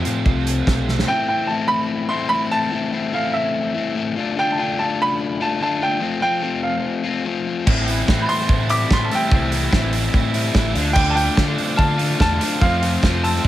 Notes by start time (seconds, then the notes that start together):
Already playing: F2 C3 F3 A3 C4 A5
0.05 F2 A2 C3 F3 A3 C4 F4, closed hi-hat
0.26 C2, kick
0.47 closed hi-hat
0.67 B1, kick, snare
0.88 snare
0.99 snare
1.07 A2 E3 A3 C4 E4 G5
1.28 A3 C4 E4 G5
1.47 E3 A3 C4 E4 A5
1.68 B5
2.09 C4 E4 C6
2.14 A3
2.29 A2 E3 A3 B5
2.33 C4 E4
2.51 A3 C4 E4 A5
2.71 A2 E3 A3 C4 E4
2.92 A3 C4 E4
3.12 E3 A3 C4 E4 F5
3.33 E5
3.75 A3 C4 E4
3.95 A2 E3 A3 C4 E4
4.16 D3 A3 D4 F4
4.36 D3 A3 D4 F4 G5
4.52 A5
4.57 A3 D4 F4 G5
4.78 D3 A3 D4 F4 A5
5.02 B5
5.41 A3 D4 F4 A5
5.60 D3 A3 D4 A5
5.64 F4
5.80 D4 F4 G5
5.85 A3
6.00 F3 A3 C4 F4
6.20 A3 C4 F4 G5
6.41 F3 A3 C4 F4
6.63 F5
7.04 C4 F4
7.08 A3
7.25 F3 A3 C4 F4
7.46 A3 C4 F4
7.65 A1 A2 E3 A3 C4 E4, kick, crash
7.86 E3 C4 E4, open hi-hat
7.90 A3
8.08 A2 E3 A3 C4 E4, kick, snare
8.20 B5 G6
8.26 C4 C6 A6, open hi-hat
8.40 snare
8.49 A2 E4, kick
8.69 G3 A3 C4 E4 D6 B6, open hi-hat
8.89 A2 E3 A3 C4 E4, kick, snare
8.93 C6 A6
9.04 A5 F6
9.10 C4 E4 E6, snare, open hi-hat
9.15 A3 G5
9.31 C2 A2 E3 A3 C4 E4, kick
9.52 E3 A3 C4 E4, open hi-hat
9.71 A1 E3 A3 C4 E4, kick, snare
9.93 C4, open hi-hat
10.14 A2 E4, kick
10.34 G3 A3 C4 E4, open hi-hat
10.54 A1 A2 E3 A3 C4, kick, snare
10.58 E4
10.74 D2 D3 A3 D4 F4, snare, open hi-hat
10.93 D3 A3 D4 F4 G5 D6, kick, crash
10.98 D3
11.08 A5 F6
11.12 F4 G5 D6
11.16 A3 D4, open hi-hat
11.35 D3 A3 D4, kick, snare
11.39 D3 F4
11.58 C4, open hi-hat
11.76 D3 F4 A5 F6, kick
11.98 A3 D4 F4, open hi-hat
12.18 E2 D3 A3 D4 F4 A5 F6, kick, snare
12.22 D3
12.41 A3 C4 D4 F4, snare, open hi-hat
12.61 F2 F3 A3 C4 F5 C6, kick
12.65 F4
12.82 C3 A3 C4 F4, open hi-hat
13.02 F2 F3 A3 C4 F4, kick, snare
13.23 C4 A5 E6, open hi-hat
13.35 snare
13.43 A2 E3, kick